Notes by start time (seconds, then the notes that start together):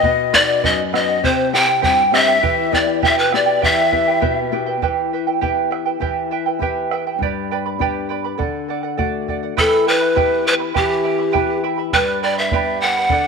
Already playing: D#5
0.03 B2 B4 D#5 F#5, bombo low
0.33 B3 D#4 F#4 B4 D5 D#5 F#5, bombo low
0.48 D#5 F#5
0.63 F#2 B4 D#5 F#5, bombo low
0.92 B3 D#4 F#4 B4 D#5 F#5, bombo rim
1.08 D#5 F#5
1.23 C3 E4 G4 C5 E5 G5, bombo low
1.53 C4 E4 G4 C5 E5 G5
1.68 E4 C5 G5
1.82 G2 E4 G4 C5 E5 G5, bombo low
2.12 C4 E4 G4 C5 E5 G5, bombo rim
2.27 E4 C5 G5
2.42 E3 E4 G4 B4 E5 G5, bombo low
2.72 B3 E4 G4 B4 D5 D#5 E5 G5, bombo low
2.76 D5
2.87 E4 B4 G5
3.02 B2 E4 G4 B4 E5 G5, bombo low
3.19 B4
3.31 B3 E4 G4 B4 D5 E5 G5, bombo rim
3.46 E4 B4 G5
3.61 E3 E4 G4 B4 E5 F#5 G5, bombo low
3.67 E5
3.91 B3 E4 G4 B4 E5 G5, bombo low
4.07 E4 B4 G5
4.21 B2 E4 G4 B4 E5 G5, bombo low
4.52 B3 E4 G4 B4 E5 G5
4.66 E4 B4 G5
4.82 E3 E4 G4 B4 E5 G5, bombo low
5.13 E4 B4 E5 G5
5.27 E4 B4 G5
5.41 B3 E4 G4 B4 E5 G5, bombo low
5.71 E4 B4 E5 G5, bombo rim
5.86 E4 B4 G5
6.00 E3 E4 G4 B4 E5 G5, bombo low
6.31 E4 B4 E5 G5
6.46 E4 B4 G5
6.59 B3 E4 G4 B4 E5 G5, bombo low
6.91 E4 B4 E5 G5, bombo rim
7.07 E4 B4 G5
7.19 G2 G4 B4 D5 G5, bombo low
7.23 B5
7.51 B4 D5 G5 B5
7.66 B4 D5 B5
7.79 B3 D4 G4 B4 D5 G5 B5, bombo low
8.09 B4 D5 G5 B5
8.24 B4 D5 B5
8.38 D3 A4 D5 F#5, bombo low
8.68 A4 D5 F#5
8.83 D5 F#5
8.97 A3 D4 F#4 A4 D5 F#5, bombo low
9.28 A4 D5 F#5, bombo low
9.43 D5 F#5
9.57 E3 E4 A4 B4 E5 G5 B5, bombo low
9.87 E4 B4 E5 G5 B5
10.01 E4 E5 B5
10.16 B3 E4 G4 B4 E5 G5 B5, bombo low
10.45 E4 B4 E5 G5 B5
10.60 E4 E5 B5
10.74 E3 E4 G4 B4 E5 G5 B5, bombo low
11.04 E4 E5 G5 B5
11.19 E4 E5 B5
11.33 B3 E4 G4 B4 E5 G5 B5, bombo low
11.63 E4 E5 G5 B5
11.78 E4 E5 B5
11.93 G2 G4 B4 D5 G5 B5, bombo low
12.23 B4 D5 G5 B5
12.38 B4 D5 E5
12.51 B3 D4 G4 B4 D5 G5 B5, bombo low
12.81 B4 D5 F#5 G5 B5
12.97 B4 D5 B5
13.10 D3 A4 D5 F#5, bombo low